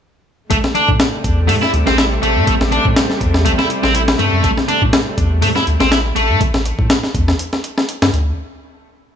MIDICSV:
0, 0, Header, 1, 5, 480
1, 0, Start_track
1, 0, Key_signature, 0, "minor"
1, 0, Tempo, 491803
1, 493, Time_signature, 4, 2, 24, 8
1, 8937, End_track
2, 0, Start_track
2, 0, Title_t, "Distorted electric guitar"
2, 0, Program_c, 0, 30
2, 492, Note_on_c, 0, 57, 82
2, 548, Note_off_c, 0, 57, 0
2, 730, Note_on_c, 0, 62, 98
2, 856, Note_off_c, 0, 62, 0
2, 1450, Note_on_c, 0, 57, 104
2, 1507, Note_off_c, 0, 57, 0
2, 1581, Note_on_c, 0, 64, 108
2, 1660, Note_off_c, 0, 64, 0
2, 1823, Note_on_c, 0, 60, 79
2, 1922, Note_off_c, 0, 60, 0
2, 1931, Note_on_c, 0, 64, 105
2, 1987, Note_off_c, 0, 64, 0
2, 2173, Note_on_c, 0, 57, 109
2, 2399, Note_off_c, 0, 57, 0
2, 2411, Note_on_c, 0, 57, 82
2, 2468, Note_off_c, 0, 57, 0
2, 2650, Note_on_c, 0, 62, 103
2, 2776, Note_off_c, 0, 62, 0
2, 3368, Note_on_c, 0, 57, 106
2, 3426, Note_off_c, 0, 57, 0
2, 3501, Note_on_c, 0, 64, 104
2, 3580, Note_off_c, 0, 64, 0
2, 3741, Note_on_c, 0, 60, 75
2, 3841, Note_off_c, 0, 60, 0
2, 3854, Note_on_c, 0, 64, 106
2, 3909, Note_off_c, 0, 64, 0
2, 4091, Note_on_c, 0, 57, 109
2, 4321, Note_off_c, 0, 57, 0
2, 4332, Note_on_c, 0, 57, 75
2, 4388, Note_off_c, 0, 57, 0
2, 4572, Note_on_c, 0, 62, 101
2, 4697, Note_off_c, 0, 62, 0
2, 5291, Note_on_c, 0, 57, 104
2, 5348, Note_off_c, 0, 57, 0
2, 5422, Note_on_c, 0, 64, 105
2, 5500, Note_off_c, 0, 64, 0
2, 5663, Note_on_c, 0, 60, 75
2, 5762, Note_off_c, 0, 60, 0
2, 5771, Note_on_c, 0, 64, 110
2, 5828, Note_off_c, 0, 64, 0
2, 6012, Note_on_c, 0, 57, 101
2, 6242, Note_off_c, 0, 57, 0
2, 8937, End_track
3, 0, Start_track
3, 0, Title_t, "String section"
3, 0, Program_c, 1, 48
3, 491, Note_on_c, 1, 48, 81
3, 492, Note_on_c, 1, 57, 86
3, 493, Note_on_c, 1, 55, 77
3, 6213, Note_off_c, 1, 48, 0
3, 6214, Note_off_c, 1, 55, 0
3, 6214, Note_off_c, 1, 57, 0
3, 8937, End_track
4, 0, Start_track
4, 0, Title_t, "Sub bass"
4, 0, Program_c, 2, 38
4, 492, Note_on_c, 2, 33, 104
4, 593, Note_off_c, 2, 33, 0
4, 864, Note_on_c, 2, 45, 82
4, 948, Note_off_c, 2, 45, 0
4, 1214, Note_on_c, 2, 40, 84
4, 1452, Note_on_c, 2, 45, 81
4, 1467, Note_off_c, 2, 40, 0
4, 1553, Note_off_c, 2, 45, 0
4, 1692, Note_on_c, 2, 38, 96
4, 1793, Note_off_c, 2, 38, 0
4, 1822, Note_on_c, 2, 33, 97
4, 2132, Note_off_c, 2, 33, 0
4, 2172, Note_on_c, 2, 33, 78
4, 2300, Note_on_c, 2, 45, 88
4, 2315, Note_off_c, 2, 33, 0
4, 2386, Note_off_c, 2, 45, 0
4, 2412, Note_on_c, 2, 33, 45
4, 2517, Note_off_c, 2, 33, 0
4, 2541, Note_on_c, 2, 33, 87
4, 2723, Note_off_c, 2, 33, 0
4, 2784, Note_on_c, 2, 45, 81
4, 2868, Note_off_c, 2, 45, 0
4, 3133, Note_on_c, 2, 40, 84
4, 3372, Note_on_c, 2, 33, 84
4, 3387, Note_off_c, 2, 40, 0
4, 3473, Note_off_c, 2, 33, 0
4, 3742, Note_on_c, 2, 33, 98
4, 4052, Note_off_c, 2, 33, 0
4, 4091, Note_on_c, 2, 43, 85
4, 4193, Note_off_c, 2, 43, 0
4, 4221, Note_on_c, 2, 42, 93
4, 4307, Note_off_c, 2, 42, 0
4, 4332, Note_on_c, 2, 33, 105
4, 4433, Note_off_c, 2, 33, 0
4, 4703, Note_on_c, 2, 45, 87
4, 4788, Note_off_c, 2, 45, 0
4, 5051, Note_on_c, 2, 40, 84
4, 5291, Note_on_c, 2, 45, 79
4, 5306, Note_off_c, 2, 40, 0
4, 5393, Note_off_c, 2, 45, 0
4, 5534, Note_on_c, 2, 38, 90
4, 5634, Note_off_c, 2, 38, 0
4, 5662, Note_on_c, 2, 33, 93
4, 5972, Note_off_c, 2, 33, 0
4, 6010, Note_on_c, 2, 33, 80
4, 6139, Note_on_c, 2, 45, 84
4, 6154, Note_off_c, 2, 33, 0
4, 6226, Note_off_c, 2, 45, 0
4, 6254, Note_on_c, 2, 33, 45
4, 6358, Note_off_c, 2, 33, 0
4, 6383, Note_on_c, 2, 33, 83
4, 6563, Note_off_c, 2, 33, 0
4, 6625, Note_on_c, 2, 45, 87
4, 6709, Note_off_c, 2, 45, 0
4, 6974, Note_on_c, 2, 40, 89
4, 7163, Note_off_c, 2, 40, 0
4, 7827, Note_on_c, 2, 43, 86
4, 7910, Note_off_c, 2, 43, 0
4, 7934, Note_on_c, 2, 38, 87
4, 8124, Note_off_c, 2, 38, 0
4, 8937, End_track
5, 0, Start_track
5, 0, Title_t, "Drums"
5, 493, Note_on_c, 9, 36, 111
5, 494, Note_on_c, 9, 42, 92
5, 590, Note_off_c, 9, 36, 0
5, 592, Note_off_c, 9, 42, 0
5, 625, Note_on_c, 9, 38, 47
5, 722, Note_off_c, 9, 38, 0
5, 733, Note_on_c, 9, 42, 69
5, 830, Note_off_c, 9, 42, 0
5, 864, Note_on_c, 9, 36, 93
5, 961, Note_off_c, 9, 36, 0
5, 973, Note_on_c, 9, 38, 114
5, 973, Note_on_c, 9, 42, 84
5, 1070, Note_off_c, 9, 38, 0
5, 1070, Note_off_c, 9, 42, 0
5, 1213, Note_on_c, 9, 36, 104
5, 1214, Note_on_c, 9, 42, 74
5, 1311, Note_off_c, 9, 36, 0
5, 1312, Note_off_c, 9, 42, 0
5, 1454, Note_on_c, 9, 46, 85
5, 1552, Note_off_c, 9, 46, 0
5, 1587, Note_on_c, 9, 38, 42
5, 1684, Note_off_c, 9, 38, 0
5, 1696, Note_on_c, 9, 42, 72
5, 1793, Note_off_c, 9, 42, 0
5, 1825, Note_on_c, 9, 38, 58
5, 1923, Note_off_c, 9, 38, 0
5, 1935, Note_on_c, 9, 38, 125
5, 1935, Note_on_c, 9, 42, 86
5, 2032, Note_off_c, 9, 38, 0
5, 2032, Note_off_c, 9, 42, 0
5, 2176, Note_on_c, 9, 42, 73
5, 2273, Note_off_c, 9, 42, 0
5, 2414, Note_on_c, 9, 36, 110
5, 2415, Note_on_c, 9, 42, 87
5, 2511, Note_off_c, 9, 36, 0
5, 2512, Note_off_c, 9, 42, 0
5, 2547, Note_on_c, 9, 38, 54
5, 2645, Note_off_c, 9, 38, 0
5, 2655, Note_on_c, 9, 42, 75
5, 2753, Note_off_c, 9, 42, 0
5, 2784, Note_on_c, 9, 36, 99
5, 2882, Note_off_c, 9, 36, 0
5, 2893, Note_on_c, 9, 38, 117
5, 2893, Note_on_c, 9, 42, 88
5, 2991, Note_off_c, 9, 38, 0
5, 2991, Note_off_c, 9, 42, 0
5, 3024, Note_on_c, 9, 38, 37
5, 3121, Note_off_c, 9, 38, 0
5, 3132, Note_on_c, 9, 36, 96
5, 3133, Note_on_c, 9, 42, 72
5, 3230, Note_off_c, 9, 36, 0
5, 3230, Note_off_c, 9, 42, 0
5, 3263, Note_on_c, 9, 38, 60
5, 3360, Note_off_c, 9, 38, 0
5, 3374, Note_on_c, 9, 42, 87
5, 3472, Note_off_c, 9, 42, 0
5, 3502, Note_on_c, 9, 38, 43
5, 3600, Note_off_c, 9, 38, 0
5, 3612, Note_on_c, 9, 42, 67
5, 3710, Note_off_c, 9, 42, 0
5, 3743, Note_on_c, 9, 38, 60
5, 3841, Note_off_c, 9, 38, 0
5, 3853, Note_on_c, 9, 42, 95
5, 3950, Note_off_c, 9, 42, 0
5, 3982, Note_on_c, 9, 38, 123
5, 4079, Note_off_c, 9, 38, 0
5, 4093, Note_on_c, 9, 42, 67
5, 4190, Note_off_c, 9, 42, 0
5, 4332, Note_on_c, 9, 36, 109
5, 4333, Note_on_c, 9, 42, 89
5, 4430, Note_off_c, 9, 36, 0
5, 4430, Note_off_c, 9, 42, 0
5, 4465, Note_on_c, 9, 38, 48
5, 4563, Note_off_c, 9, 38, 0
5, 4573, Note_on_c, 9, 42, 75
5, 4670, Note_off_c, 9, 42, 0
5, 4702, Note_on_c, 9, 36, 92
5, 4800, Note_off_c, 9, 36, 0
5, 4812, Note_on_c, 9, 38, 122
5, 4812, Note_on_c, 9, 42, 86
5, 4909, Note_off_c, 9, 38, 0
5, 4909, Note_off_c, 9, 42, 0
5, 5052, Note_on_c, 9, 36, 94
5, 5053, Note_on_c, 9, 42, 72
5, 5150, Note_off_c, 9, 36, 0
5, 5151, Note_off_c, 9, 42, 0
5, 5293, Note_on_c, 9, 46, 87
5, 5390, Note_off_c, 9, 46, 0
5, 5424, Note_on_c, 9, 38, 42
5, 5521, Note_off_c, 9, 38, 0
5, 5534, Note_on_c, 9, 42, 67
5, 5632, Note_off_c, 9, 42, 0
5, 5665, Note_on_c, 9, 38, 62
5, 5763, Note_off_c, 9, 38, 0
5, 5774, Note_on_c, 9, 38, 120
5, 5774, Note_on_c, 9, 42, 93
5, 5872, Note_off_c, 9, 38, 0
5, 5872, Note_off_c, 9, 42, 0
5, 6013, Note_on_c, 9, 42, 69
5, 6110, Note_off_c, 9, 42, 0
5, 6253, Note_on_c, 9, 36, 112
5, 6254, Note_on_c, 9, 42, 95
5, 6351, Note_off_c, 9, 36, 0
5, 6351, Note_off_c, 9, 42, 0
5, 6385, Note_on_c, 9, 38, 57
5, 6482, Note_off_c, 9, 38, 0
5, 6495, Note_on_c, 9, 42, 72
5, 6593, Note_off_c, 9, 42, 0
5, 6624, Note_on_c, 9, 36, 101
5, 6721, Note_off_c, 9, 36, 0
5, 6733, Note_on_c, 9, 38, 115
5, 6733, Note_on_c, 9, 42, 88
5, 6831, Note_off_c, 9, 38, 0
5, 6831, Note_off_c, 9, 42, 0
5, 6865, Note_on_c, 9, 38, 38
5, 6963, Note_off_c, 9, 38, 0
5, 6974, Note_on_c, 9, 36, 100
5, 6975, Note_on_c, 9, 42, 72
5, 7072, Note_off_c, 9, 36, 0
5, 7073, Note_off_c, 9, 42, 0
5, 7108, Note_on_c, 9, 38, 62
5, 7205, Note_off_c, 9, 38, 0
5, 7216, Note_on_c, 9, 42, 92
5, 7314, Note_off_c, 9, 42, 0
5, 7348, Note_on_c, 9, 38, 44
5, 7445, Note_off_c, 9, 38, 0
5, 7457, Note_on_c, 9, 42, 73
5, 7555, Note_off_c, 9, 42, 0
5, 7590, Note_on_c, 9, 38, 62
5, 7687, Note_off_c, 9, 38, 0
5, 7698, Note_on_c, 9, 42, 93
5, 7795, Note_off_c, 9, 42, 0
5, 7829, Note_on_c, 9, 38, 122
5, 7926, Note_off_c, 9, 38, 0
5, 7941, Note_on_c, 9, 42, 69
5, 8039, Note_off_c, 9, 42, 0
5, 8937, End_track
0, 0, End_of_file